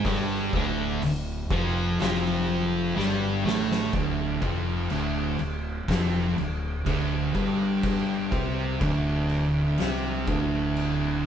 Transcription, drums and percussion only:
0.05 kick loud
0.05 open hi-hat medium
0.53 kick loud
1.02 open hi-hat medium
1.50 kick loud
1.99 snare loud
1.99 open hi-hat medium
2.99 snare medium
3.47 snare medium
3.71 snare medium
3.93 kick loud
3.93 crash medium
4.42 kick loud
4.42 crash medium
4.90 crash medium
5.39 crash medium
5.88 kick loud
5.88 snare loud
5.88 crash medium
6.38 crash medium
6.86 kick loud
6.86 crash medium
7.35 kick loud
7.35 crash medium
7.83 kick loud
7.83 crash medium
8.32 kick loud
8.32 crash medium
8.81 kick loud
8.81 crash medium
9.29 crash medium
9.78 snare loud
9.78 crash medium
10.27 kick loud
10.27 crash medium
10.76 crash medium

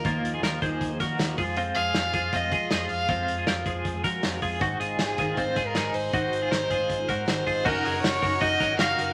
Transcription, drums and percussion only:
0.05 kick loud
0.05 closed hi-hat medium
0.25 closed hi-hat medium
0.43 snare loud
0.43 closed hi-hat medium
0.62 kick medium
0.62 closed hi-hat medium
0.81 kick medium
0.81 closed hi-hat medium
1.00 kick medium
1.00 snare soft
1.00 closed hi-hat medium
1.19 snare loud
1.19 closed hi-hat medium
1.38 kick medium
1.38 open hi-hat medium
1.57 closed hi-hat medium
1.76 closed hi-hat medium
1.94 snare loud
1.94 closed hi-hat medium
2.14 kick medium
2.14 closed hi-hat medium
2.33 kick medium
2.33 closed hi-hat medium
2.51 kick medium
2.51 closed hi-hat medium
2.71 snare loud
2.71 closed hi-hat medium
2.89 open hi-hat medium
3.08 kick loud
3.08 closed hi-hat medium
3.28 closed hi-hat medium
3.47 snare loud
3.47 closed hi-hat medium
3.66 kick medium
3.66 closed hi-hat medium
3.85 kick medium
3.85 closed hi-hat medium
4.04 kick medium
4.04 snare soft
4.04 closed hi-hat medium
4.23 snare loud
4.23 closed hi-hat medium
4.42 kick medium
4.42 open hi-hat medium
4.61 kick loud
4.61 closed hi-hat medium
4.81 closed hi-hat medium
4.99 snare loud
4.99 closed hi-hat medium
5.18 kick medium
5.18 closed hi-hat medium
5.37 kick medium
5.37 closed hi-hat medium
5.56 kick medium
5.56 snare soft
5.56 closed hi-hat medium
5.75 snare medium
5.75 closed hi-hat medium
5.94 open hi-hat medium
6.13 kick loud
6.13 closed hi-hat medium
6.33 closed hi-hat medium
6.52 snare medium
6.52 closed hi-hat medium
6.70 kick medium
6.70 closed hi-hat medium
6.90 kick medium
6.90 closed hi-hat medium
7.08 kick medium
7.08 snare soft
7.08 closed hi-hat medium
7.28 snare loud
7.28 closed hi-hat medium
7.47 kick medium
7.47 open hi-hat medium
7.66 kick loud
7.66 crash loud
7.85 hi-hat pedal medium
7.85 open hi-hat medium
8.04 snare loud
8.04 hi-hat pedal medium
8.04 open hi-hat medium
8.22 kick medium
8.22 hi-hat pedal medium
8.22 open hi-hat medium
8.41 kick medium
8.41 hi-hat pedal medium
8.41 open hi-hat medium
8.60 kick medium
8.60 snare soft
8.60 hi-hat pedal medium
8.60 open hi-hat medium
8.79 snare loud
8.79 hi-hat pedal medium
8.79 open hi-hat loud
8.99 hi-hat pedal medium
8.99 open hi-hat medium

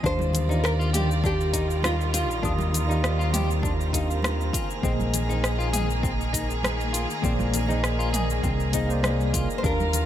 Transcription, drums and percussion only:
0.04 kick loud
0.04 cabasa soft
0.19 high conga medium
0.19 cabasa soft
0.33 closed hi-hat medium
0.33 low conga medium
0.33 cabasa medium
0.49 low conga medium
0.49 cabasa soft
0.65 cross-stick loud
0.65 cabasa soft
0.81 cabasa soft
0.94 closed hi-hat loud
0.94 mid tom medium
0.94 cabasa medium
1.11 cabasa soft
1.24 kick loud
1.24 cabasa soft
1.41 cabasa soft
1.54 kick medium
1.54 closed hi-hat loud
1.54 cabasa medium
1.70 cabasa soft
1.83 cross-stick loud
1.83 high conga medium
1.83 cabasa soft
2.01 cabasa soft
2.14 closed hi-hat loud
2.14 cabasa medium
2.31 cabasa soft
2.43 kick loud
2.43 cabasa soft
2.58 high conga loud
2.58 cabasa soft
2.74 closed hi-hat medium
2.74 low conga medium
2.74 cabasa medium
2.89 low conga medium
2.89 cabasa soft
3.04 cross-stick loud
3.04 cabasa soft
3.21 cabasa soft
3.33 closed hi-hat medium
3.33 mid tom medium
3.33 high conga medium
3.33 cabasa medium
3.51 cabasa soft
3.63 kick loud
3.63 cabasa soft
3.81 cabasa soft
3.93 kick medium
3.93 closed hi-hat medium
3.93 cabasa medium
4.11 cabasa soft
4.22 cross-stick loud
4.22 high conga medium
4.22 cabasa soft
4.41 cabasa soft
4.53 kick loud
4.53 closed hi-hat medium
4.53 cabasa medium
4.70 cabasa soft
4.83 kick loud
4.83 cabasa soft
5.00 high conga medium
5.00 cabasa soft
5.14 closed hi-hat medium
5.14 low conga medium
5.14 cabasa medium
5.29 low conga medium
5.29 cabasa soft
5.44 cross-stick loud
5.44 cabasa soft
5.60 cabasa soft
5.73 closed hi-hat medium
5.73 mid tom medium
5.73 high conga medium
5.73 cabasa medium
5.90 cabasa soft
6.03 kick loud
6.03 cabasa soft
6.21 cabasa soft
6.33 kick medium
6.33 closed hi-hat medium
6.33 cabasa medium
6.50 cabasa soft
6.63 cross-stick loud
6.63 high conga medium
6.63 cabasa soft
6.80 cabasa soft
6.94 closed hi-hat medium
6.94 cabasa medium
7.10 cabasa soft
7.24 kick loud
7.24 cabasa soft
7.39 high conga loud
7.39 cabasa soft
7.54 closed hi-hat medium
7.54 low conga medium
7.54 cabasa medium
7.69 low conga medium
7.69 cabasa soft
7.84 cross-stick medium
7.84 cabasa soft
8.00 cabasa soft
8.14 closed hi-hat medium
8.14 mid tom medium
8.14 cabasa medium
8.30 cabasa soft
8.44 kick loud
8.44 cabasa soft
8.60 cabasa soft
8.73 kick medium
8.73 closed hi-hat medium
8.73 cabasa medium
8.90 cabasa soft
9.03 cross-stick loud
9.03 high conga medium
9.03 cabasa soft
9.20 cabasa soft
9.34 kick loud
9.34 closed hi-hat medium
9.34 cabasa medium
9.50 cabasa soft
9.64 kick loud
9.64 cabasa soft
9.80 high conga medium
9.80 cabasa soft
9.93 closed hi-hat medium
9.93 low conga medium
9.93 cabasa medium

